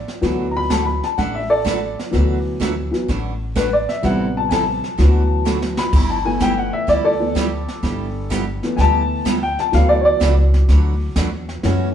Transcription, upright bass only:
0.23 D2
1.18 A1
2.14 D2
3.09 A1
4.04 A1
4.99 D2
5.93 G1
6.88 D2
7.83 G1
8.78 D2
9.73 D2
10.21 C#2
10.69 D2
11.16 E2
11.64 F#2

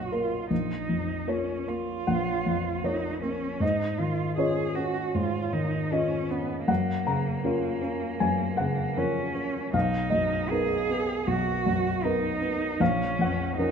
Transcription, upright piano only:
Already playing: B1 F#2 A#2 A#3 D#4 B4 C#5 D#5
0.11 A#3 A#4
0.50 A#1
0.89 F2
1.27 A#3 F4 C#5
1.67 A#3
2.07 A#1 F#5
2.46 F2
2.83 F3 A#3 C#5
3.21 A#3
3.60 G#2 D#5
3.99 D#3
4.38 C#4 F4 C#5 D#5
4.76 C#4
5.14 G#2
5.53 D#3
5.92 C#4 F4 D#5
6.31 C#4
6.68 F#2 F#5
7.07 C#3 A#5
7.44 C#4 F4 A#4
7.82 C#4
8.20 F#2 G#5
8.57 C#3 F#5
8.97 F3 C#4 A#4
9.35 C#4
9.73 B1 F5
10.10 F#2 D#5
10.51 B3 D#4 A#4
10.89 B3
11.27 B1
11.66 F#2
12.04 B3 D#4 A#4
12.41 B3
12.80 A#1 F5
13.19 F2 F#5
13.58 F3 C#4 A#4

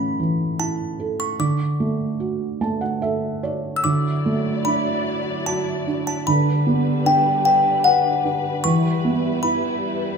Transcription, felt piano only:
Already playing: A2 E3 C#4
0.20 E3
0.59 E4
1.00 A4
1.39 D3
1.80 A3
2.20 F#4
2.61 A3 A5
2.81 F#5
3.02 A4 E5
3.43 C#5 D5
3.84 D3
4.26 A3
4.66 D4
5.47 F#4
5.88 D4
6.28 D3
6.67 B3
7.06 D4
7.85 B4
8.25 D4
8.65 E3
9.05 B3
9.44 E4

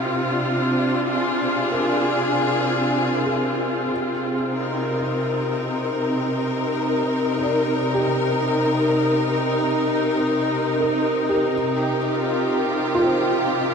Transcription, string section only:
Already playing: C3 C4 F4
0.25 D4
1.10 G#4
3.93 C3
4.51 D#4 A#4
11.75 G4
12.14 F4

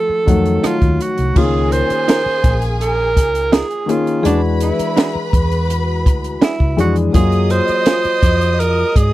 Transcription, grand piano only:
Already playing: D#3 F3 F#3 A3
0.26 D#3 F#3 A3 F#5
1.34 D#3 A#3 C#4 F4
3.86 D#3 A#3 C#4 G#4
4.23 E3 G#3 D4 F#4
6.77 E3 G#3 D4 G#4
7.13 F#3 A#3 F4 G#4

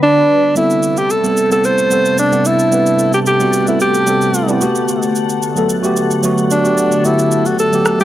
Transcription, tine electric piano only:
0.55 G3 B3 C4 A4
1.23 G3 B3 C4 A4
1.50 G3 B3 C4 A4
1.90 G3 B3 C4 A4
2.31 G3 B3 C4 D4
2.71 G3 B3 C4 B4
3.40 G3 B3 C4 F#4
3.67 G3 B3 C4 A4
4.07 G3 B3 C4 A4
4.48 G3 B3 C4 E4
4.61 A3 B3 F#4 G4
5.56 F#3 A3 B3 A4
5.83 A3 B3 F#4 G4
6.23 F#3 A3 B3 F#4
6.64 A3 B3 F#4 G4
7.04 A3 B3 F#4 G4
7.72 F#3 A3 B3 G4
7.99 G3 A3 B3

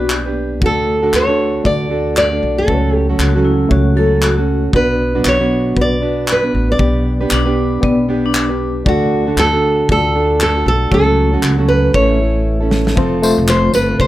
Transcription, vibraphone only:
0.11 G4
3.19 F#4
3.45 E4
3.72 F#4
3.97 A4
4.24 F#4
7.33 D4
7.84 B3
8.26 D4

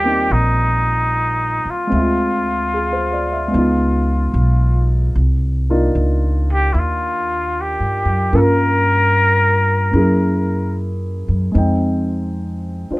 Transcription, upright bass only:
Already playing: D#2
0.30 A#1
1.65 muted upright bass stroke
1.92 D2
3.54 C#2
4.34 B1
5.16 C2
5.95 C#2
6.74 D#2
7.80 G2
8.05 F#2
8.33 G2
9.93 F#2
11.28 F#2
11.55 F2
12.91 muted upright bass stroke

